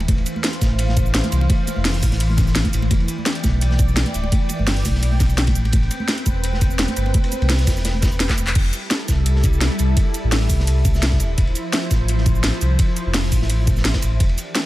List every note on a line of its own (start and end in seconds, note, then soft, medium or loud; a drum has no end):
0.00 5.52 E3 medium
0.00 2.88 C5 medium
0.00 2.88 F5 medium
0.00 ride medium
0.00 muted conga medium
0.08 0.24 D1 loud
0.08 kick loud
0.08 closed hi-hat medium
0.08 ride medium
0.08 high conga medium
0.18 ride soft
0.26 closed hi-hat medium
0.26 ride medium
0.26 cabasa medium
0.36 high conga medium
0.44 snare loud
0.44 closed hi-hat medium
0.44 ride medium
0.53 closed hi-hat soft
0.53 ride soft
0.61 1.22 A1 medium
0.61 kick medium
0.61 snare medium
0.61 closed hi-hat medium
0.61 ride medium
0.61 muted conga medium
0.61 high conga loud
0.61 cabasa medium
0.78 closed hi-hat loud
0.78 ride loud
0.88 snare soft
0.88 high conga medium
0.97 kick loud
0.97 closed hi-hat medium
0.97 ride medium
0.97 cabasa medium
1.06 cabasa soft
1.14 snare loud
1.14 closed hi-hat loud
1.14 ride medium
1.24 closed hi-hat soft
1.24 high conga medium
1.32 1.48 C2 medium
1.32 closed hi-hat medium
1.32 ride medium
1.32 cabasa medium
1.41 muted conga medium
1.49 kick loud
1.49 closed hi-hat medium
1.49 ride medium
1.49 high conga medium
1.67 closed hi-hat medium
1.67 ride medium
1.67 muted conga medium
1.67 cabasa medium
1.76 2.01 F1 loud
1.76 high conga medium
1.85 snare loud
1.85 closed hi-hat medium
1.85 open hi-hat medium
1.94 snare soft
1.94 closed hi-hat soft
2.03 2.63 A1 medium
2.03 kick medium
2.03 open hi-hat medium
2.03 ride medium
2.03 muted conga medium
2.03 high conga medium
2.03 cabasa medium
2.12 snare soft
2.12 closed hi-hat soft
2.20 closed hi-hat loud
2.20 ride loud
2.30 high conga medium
2.38 kick loud
2.38 snare soft
2.38 closed hi-hat medium
2.38 ride medium
2.38 cabasa medium
2.47 snare soft
2.47 cabasa soft
2.55 snare loud
2.55 closed hi-hat medium
2.55 ride medium
2.64 kick medium
2.64 snare soft
2.64 closed hi-hat soft
2.64 high conga loud
2.73 2.89 A1 medium
2.73 closed hi-hat medium
2.73 ride medium
2.73 cabasa medium
2.82 ride soft
2.82 muted conga medium
2.91 3.07 E1 loud
2.91 5.53 D5 medium
2.91 8.52 G5 medium
2.91 kick loud
2.91 closed hi-hat medium
2.91 ride loud
2.91 high conga loud
3.00 ride soft
3.08 closed hi-hat medium
3.08 ride medium
3.08 cabasa medium
3.18 high conga medium
3.26 snare loud
3.26 closed hi-hat medium
3.26 ride medium
3.35 closed hi-hat soft
3.35 ride soft
3.43 4.05 B1 medium
3.43 kick medium
3.43 snare soft
3.43 closed hi-hat medium
3.43 ride medium
3.43 muted conga medium
3.43 high conga medium
3.43 cabasa medium
3.61 closed hi-hat medium
3.61 ride medium
3.71 snare soft
3.71 high conga medium
3.79 kick loud
3.79 closed hi-hat medium
3.79 ride medium
3.79 cabasa medium
3.88 cabasa soft
3.96 snare loud
3.96 closed hi-hat medium
3.96 ride loud
4.06 closed hi-hat soft
4.06 high conga medium
4.14 4.30 D1 medium
4.14 closed hi-hat medium
4.14 ride medium
4.14 cabasa medium
4.24 muted conga medium
4.32 kick loud
4.32 closed hi-hat medium
4.32 ride medium
4.32 high conga loud
4.49 closed hi-hat medium
4.49 ride medium
4.49 muted conga medium
4.49 cabasa medium
4.59 4.84 G1 loud
4.59 high conga medium
4.67 snare loud
4.67 closed hi-hat medium
4.67 open hi-hat medium
4.77 snare medium
4.77 closed hi-hat soft
4.85 5.57 B1 medium
4.85 kick medium
4.85 open hi-hat medium
4.85 ride medium
4.85 muted conga soft
4.85 high conga medium
4.85 cabasa medium
4.94 snare soft
5.03 closed hi-hat medium
5.03 ride medium
5.12 high conga medium
5.20 kick loud
5.20 snare soft
5.20 closed hi-hat medium
5.20 ride medium
5.20 cabasa medium
5.29 ride soft
5.29 cabasa soft
5.38 snare loud
5.38 closed hi-hat medium
5.38 ride medium
5.47 kick medium
5.47 closed hi-hat soft
5.47 ride medium
5.47 high conga medium
5.55 5.72 A1 medium
5.55 8.53 C4 medium
5.55 8.53 B4 medium
5.55 closed hi-hat medium
5.55 ride soft
5.55 cabasa medium
5.65 ride medium
5.65 muted conga medium
5.72 5.89 A1 loud
5.72 kick loud
5.72 closed hi-hat medium
5.72 ride medium
5.72 high conga medium
5.83 ride soft
5.91 closed hi-hat medium
5.91 ride medium
5.91 cabasa medium
6.00 high conga medium
6.08 snare loud
6.08 closed hi-hat medium
6.08 ride medium
6.18 closed hi-hat soft
6.18 ride soft
6.26 6.87 E1 medium
6.26 kick medium
6.26 closed hi-hat medium
6.26 ride medium
6.26 muted conga soft
6.26 high conga loud
6.26 cabasa medium
6.44 closed hi-hat medium
6.44 ride medium
6.53 snare soft
6.53 high conga medium
6.61 kick loud
6.61 closed hi-hat medium
6.61 ride medium
6.61 cabasa medium
6.71 cabasa soft
6.79 snare loud
6.79 closed hi-hat medium
6.79 ride loud
6.88 closed hi-hat soft
6.88 high conga loud
6.96 7.13 G1 medium
6.96 closed hi-hat medium
6.96 ride medium
6.96 cabasa medium
7.06 ride soft
7.06 muted conga medium
7.14 kick loud
7.14 closed hi-hat medium
7.14 ride medium
7.14 high conga medium
7.24 ride medium
7.32 closed hi-hat medium
7.32 ride soft
7.32 muted conga medium
7.32 cabasa medium
7.41 7.66 C2 loud
7.41 ride medium
7.41 high conga medium
7.49 snare loud
7.49 closed hi-hat medium
7.49 open hi-hat medium
7.59 snare medium
7.59 closed hi-hat soft
7.67 8.28 E1 medium
7.67 kick medium
7.67 snare loud
7.67 open hi-hat medium
7.67 ride medium
7.67 muted conga medium
7.67 high conga loud
7.67 cabasa medium
7.77 snare soft
7.77 cabasa soft
7.85 snare medium
7.85 closed hi-hat loud
7.85 ride medium
7.95 high conga medium
8.02 kick loud
8.02 snare soft
8.02 snare loud
8.02 closed hi-hat medium
8.02 ride medium
8.02 cabasa medium
8.12 cabasa soft
8.20 snare loud
8.20 closed hi-hat medium
8.20 ride medium
8.29 kick medium
8.29 snare loud
8.29 clap medium
8.29 closed hi-hat soft
8.29 ride medium
8.29 high conga loud
8.38 8.54 E1 medium
8.38 closed hi-hat medium
8.38 cabasa medium
8.47 clap loud
8.47 closed hi-hat soft
8.47 ride medium
8.47 muted conga medium
8.55 8.71 F1 loud
8.55 11.18 G3 medium
8.55 14.16 E4 medium
8.55 11.18 A4 medium
8.55 kick loud
8.55 closed hi-hat medium
8.55 crash loud
8.55 ride medium
8.64 ride soft
8.73 closed hi-hat medium
8.73 ride medium
8.73 cabasa medium
8.90 snare loud
8.90 closed hi-hat loud
8.90 ride medium
9.01 ride soft
9.08 9.69 C2 medium
9.08 kick medium
9.08 snare soft
9.08 closed hi-hat medium
9.08 ride medium
9.08 cabasa medium
9.26 closed hi-hat loud
9.26 ride medium
9.36 snare soft
9.44 kick loud
9.44 closed hi-hat medium
9.44 ride medium
9.44 cabasa medium
9.53 cabasa soft
9.61 snare loud
9.61 closed hi-hat loud
9.61 ride loud
9.79 9.95 C2 medium
9.79 closed hi-hat medium
9.79 ride medium
9.79 cabasa medium
9.97 kick loud
9.97 closed hi-hat loud
9.97 ride medium
10.14 closed hi-hat medium
10.14 ride medium
10.14 cabasa medium
10.24 10.48 A1 loud
10.32 snare loud
10.32 closed hi-hat loud
10.32 open hi-hat medium
10.41 snare soft
10.49 11.22 C2 medium
10.49 kick medium
10.49 open hi-hat medium
10.49 ride medium
10.49 cabasa medium
10.60 snare soft
10.67 closed hi-hat loud
10.67 ride medium
10.85 kick loud
10.85 closed hi-hat medium
10.85 ride medium
10.85 cabasa medium
10.94 snare soft
10.94 cabasa soft
11.02 snare loud
11.02 closed hi-hat loud
11.02 ride loud
11.12 kick medium
11.12 snare medium
11.19 11.36 D1 medium
11.19 14.18 F3 medium
11.19 14.18 C5 medium
11.19 closed hi-hat medium
11.19 ride medium
11.19 cabasa medium
11.38 11.54 D1 loud
11.38 kick loud
11.38 closed hi-hat medium
11.38 ride loud
11.47 ride soft
11.55 closed hi-hat medium
11.55 ride medium
11.55 cabasa medium
11.73 snare loud
11.73 closed hi-hat medium
11.73 ride medium
11.82 ride soft
11.91 12.52 A1 medium
11.91 kick medium
11.91 snare medium
11.91 closed hi-hat medium
11.91 ride medium
11.91 cabasa medium
12.08 closed hi-hat loud
12.08 ride medium
12.18 snare soft
12.26 kick loud
12.26 closed hi-hat medium
12.26 ride medium
12.26 cabasa medium
12.35 cabasa soft
12.43 snare loud
12.43 closed hi-hat loud
12.43 ride medium
12.61 12.77 C2 medium
12.61 closed hi-hat medium
12.61 ride medium
12.61 cabasa medium
12.79 kick loud
12.79 closed hi-hat medium
12.79 ride medium
12.96 closed hi-hat medium
12.96 ride medium
12.96 cabasa medium
13.06 13.31 F1 loud
13.14 snare loud
13.14 closed hi-hat medium
13.14 open hi-hat medium
13.24 snare soft
13.32 13.93 A1 medium
13.32 kick medium
13.32 open hi-hat medium
13.32 ride medium
13.32 cabasa medium
13.41 snare soft
13.50 closed hi-hat loud
13.50 ride medium
13.67 kick loud
13.67 closed hi-hat medium
13.67 ride medium
13.67 cabasa medium
13.77 snare soft
13.77 cabasa soft
13.85 snare loud
13.85 closed hi-hat medium
13.85 ride medium
13.94 kick medium
13.94 snare loud
13.94 ride medium
14.02 14.19 A1 medium
14.02 closed hi-hat medium
14.02 ride medium
14.02 cabasa medium
14.20 14.36 E1 loud
14.20 14.66 E3 medium
14.20 14.66 D4 medium
14.20 14.66 G4 medium
14.20 kick loud
14.20 closed hi-hat medium
14.20 ride medium
14.29 ride soft
14.38 closed hi-hat medium
14.38 ride medium
14.38 cabasa medium
14.55 snare loud
14.55 closed hi-hat medium
14.55 ride loud